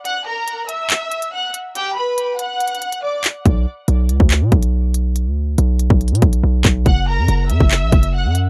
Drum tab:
HH |x-----------x-----x-----x-----x--x--------x-----|x-----------x-----x-----x-x-x-x--x--------x-----|x-----------x-----x-----x-----x--x--------x-----|x-----------x-----x-----x-x-x-x--x--------x-----|
CP |------------------------x-----------------------|------------------------------------------x-----|------------------------x-----------------------|------------------------------------------x-----|
BD |------------------------------------------------|------------------------------------------------|o--------------------o--------o-----------------|---------------------o--------o-----------o-----|

HH |x-----------x-----x-----x-----x--x--------x-----|
CP |------------------------x-----------------------|
BD |o--------------------o--------o-----------------|